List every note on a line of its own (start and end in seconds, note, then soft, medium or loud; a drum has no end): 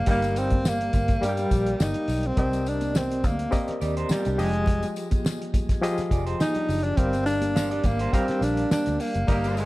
0.06 0.89 G1 loud
0.06 0.84 G3 medium
0.06 0.49 G3 medium
0.06 0.39 A#3 loud
0.06 0.49 D#4 medium
0.06 0.84 G4 medium
0.06 0.49 G4 medium
0.06 0.84 A#4 medium
0.06 0.84 D5 medium
0.06 0.85 F5 medium
0.06 kick loud
0.06 closed hi-hat loud
0.06 muted conga soft
0.06 low conga medium
0.22 closed hi-hat medium
0.22 tambourine soft
0.22 muted conga soft
0.36 0.70 C4 loud
0.36 closed hi-hat medium
0.36 tambourine soft
0.50 kick medium
0.50 closed hi-hat medium
0.50 high conga medium
0.65 1.26 A#3 medium
0.65 snare loud
0.65 tambourine medium
0.65 high conga medium
0.81 closed hi-hat medium
0.81 muted conga soft
0.93 1.16 G1 medium
0.93 kick medium
0.93 closed hi-hat medium
0.93 tambourine soft
0.93 high conga medium
0.93 low conga medium
1.08 kick loud
1.08 closed hi-hat medium
1.08 tambourine soft
1.21 1.45 G2 loud
1.21 1.99 G3 medium
1.21 1.84 G3 loud
1.21 1.99 G4 medium
1.21 1.99 A#4 medium
1.21 1.99 D5 medium
1.21 1.29 F5 medium
1.21 closed hi-hat medium
1.21 tambourine soft
1.21 muted conga soft
1.29 2.03 G5 medium
1.37 closed hi-hat medium
1.37 tambourine soft
1.37 muted conga soft
1.51 1.73 A#1 medium
1.51 kick loud
1.51 closed hi-hat medium
1.51 tambourine medium
1.66 closed hi-hat medium
1.80 1.92 G1 medium
1.80 2.28 D#4 medium
1.80 snare loud
1.80 tambourine medium
1.80 muted conga soft
1.80 high conga medium
1.94 closed hi-hat medium
1.94 low conga medium
2.08 2.30 B1 medium
2.08 open hi-hat medium
2.08 tambourine soft
2.23 2.38 C4 medium
2.23 closed hi-hat soft
2.37 3.24 C2 loud
2.37 3.14 C4 medium
2.37 2.69 C4 medium
2.37 3.15 G4 medium
2.37 3.15 A#4 medium
2.37 3.15 D5 medium
2.37 3.15 D#5 medium
2.37 kick loud
2.37 closed hi-hat medium
2.37 muted conga soft
2.37 low conga medium
2.53 closed hi-hat soft
2.53 tambourine soft
2.53 muted conga soft
2.66 2.99 D4 loud
2.66 closed hi-hat medium
2.66 tambourine soft
2.81 closed hi-hat medium
2.81 tambourine soft
2.81 high conga medium
2.95 3.27 C4 medium
2.95 snare loud
2.95 tambourine medium
2.95 high conga medium
3.11 closed hi-hat medium
3.11 muted conga soft
3.24 3.46 D2 medium
3.24 3.84 A#3 medium
3.24 kick medium
3.24 closed hi-hat medium
3.24 tambourine soft
3.24 high conga medium
3.24 low conga medium
3.39 closed hi-hat medium
3.51 4.29 C4 medium
3.51 4.29 G4 medium
3.51 4.29 A#4 medium
3.51 4.29 D5 medium
3.51 4.30 D#5 medium
3.51 kick medium
3.51 closed hi-hat medium
3.51 tambourine medium
3.68 muted fingered electric bass stroke medium
3.68 snare soft
3.68 closed hi-hat medium
3.68 muted conga soft
3.81 4.04 D#2 medium
3.81 3.96 G4 medium
3.81 3.96 D5 medium
3.81 closed hi-hat medium
3.81 tambourine soft
3.97 4.10 G4 medium
3.97 4.09 C5 medium
3.97 closed hi-hat medium
4.09 4.32 G3 medium
4.09 4.25 F4 medium
4.09 4.25 A#4 medium
4.09 muted fingered electric bass stroke soft
4.09 snare loud
4.09 tambourine medium
4.09 muted conga soft
4.09 high conga medium
4.25 4.36 C2 medium
4.25 4.53 D4 medium
4.25 4.53 G4 medium
4.25 closed hi-hat soft
4.25 tambourine soft
4.25 low conga medium
4.32 4.41 G3 medium
4.38 4.83 F1 loud
4.38 5.31 F3 medium
4.38 4.97 G#3 loud
4.38 5.31 F4 medium
4.38 5.31 G4 medium
4.38 5.31 G#4 medium
4.38 5.32 D#5 medium
4.38 open hi-hat medium
4.38 tambourine soft
4.53 closed hi-hat soft
4.66 kick loud
4.66 closed hi-hat medium
4.66 muted conga soft
4.66 low conga medium
4.83 closed hi-hat medium
4.83 tambourine soft
4.83 muted conga soft
4.96 closed hi-hat medium
4.96 tambourine medium
5.11 kick loud
5.11 closed hi-hat medium
5.11 tambourine soft
5.11 high conga medium
5.25 snare loud
5.25 tambourine medium
5.25 muted conga soft
5.25 high conga medium
5.42 closed hi-hat medium
5.54 kick medium
5.54 closed hi-hat medium
5.54 tambourine soft
5.54 high conga medium
5.54 low conga medium
5.69 kick medium
5.69 snare soft
5.69 closed hi-hat medium
5.69 tambourine soft
5.82 6.59 F3 medium
5.82 6.60 F4 medium
5.82 6.60 G4 medium
5.82 6.60 G#4 medium
5.82 6.60 D#5 loud
5.82 closed hi-hat medium
5.82 tambourine medium
5.98 muted fingered electric bass stroke soft
5.98 snare soft
5.98 closed hi-hat soft
5.98 tambourine soft
5.98 muted conga soft
6.11 6.33 F1 loud
6.11 6.27 G#4 medium
6.11 6.26 D5 medium
6.11 kick loud
6.11 closed hi-hat medium
6.11 tambourine soft
6.26 6.39 G4 medium
6.26 6.39 C5 medium
6.26 closed hi-hat medium
6.40 6.55 D#4 medium
6.40 6.85 D#4 loud
6.40 6.55 G#4 medium
6.40 snare loud
6.40 tambourine medium
6.40 muted conga soft
6.40 high conga medium
6.55 6.96 D4 medium
6.55 6.96 G4 medium
6.55 closed hi-hat medium
6.55 low conga medium
6.69 6.91 F#1 loud
6.69 open hi-hat medium
6.69 tambourine soft
6.84 6.98 D4 loud
6.84 closed hi-hat soft
6.97 7.80 G1 loud
6.97 7.75 G3 medium
6.97 7.25 C4 loud
6.97 7.75 G4 medium
6.97 7.75 A#4 medium
6.97 7.76 D5 medium
6.97 7.76 F5 medium
6.97 kick loud
6.97 closed hi-hat medium
6.97 muted conga soft
6.97 low conga medium
7.13 closed hi-hat medium
7.13 tambourine soft
7.13 muted conga soft
7.26 7.87 D4 loud
7.26 closed hi-hat medium
7.26 tambourine soft
7.41 closed hi-hat medium
7.41 tambourine soft
7.41 high conga medium
7.56 7.71 C5 medium
7.56 7.70 F5 medium
7.56 snare loud
7.56 tambourine medium
7.56 muted conga soft
7.56 high conga medium
7.71 7.99 G4 medium
7.71 7.98 D5 medium
7.71 closed hi-hat medium
7.71 muted conga soft
7.84 8.07 G#1 medium
7.84 8.14 A#3 medium
7.84 kick medium
7.84 closed hi-hat medium
7.84 tambourine soft
7.84 high conga medium
7.84 low conga medium
7.99 8.13 G4 medium
7.99 8.13 C5 medium
7.99 closed hi-hat medium
8.12 8.90 G3 medium
8.12 8.45 C4 loud
8.12 8.29 F4 medium
8.12 8.90 G4 medium
8.12 8.28 A#4 medium
8.12 8.91 A#4 medium
8.12 8.91 D5 medium
8.12 8.91 F5 medium
8.12 kick medium
8.12 closed hi-hat medium
8.12 tambourine soft
8.12 muted conga soft
8.28 9.12 D4 medium
8.28 9.11 G4 medium
8.28 muted fingered electric bass stroke soft
8.28 snare soft
8.28 closed hi-hat soft
8.41 8.64 A#1 medium
8.41 8.71 D4 loud
8.41 closed hi-hat medium
8.41 tambourine medium
8.57 closed hi-hat medium
8.71 9.02 D4 loud
8.71 muted fingered electric bass stroke soft
8.71 snare loud
8.71 tambourine medium
8.71 muted conga soft
8.71 high conga medium
8.86 8.97 D2 medium
8.86 closed hi-hat medium
8.86 tambourine soft
8.86 low conga medium
9.00 9.29 A#3 medium
9.00 open hi-hat medium
9.00 tambourine soft
9.14 9.26 F#1 loud
9.14 closed hi-hat soft
9.27 9.65 G1 loud
9.27 9.65 G3 medium
9.27 9.60 A#3 medium
9.27 9.65 D#4 medium
9.27 9.65 G4 medium
9.27 9.65 A#4 medium
9.27 9.65 D5 medium
9.27 9.65 F5 medium
9.27 kick loud
9.27 closed hi-hat loud
9.27 low conga medium
9.44 closed hi-hat medium
9.44 tambourine soft
9.44 muted conga soft
9.57 9.65 G#3 loud
9.57 closed hi-hat medium
9.57 tambourine soft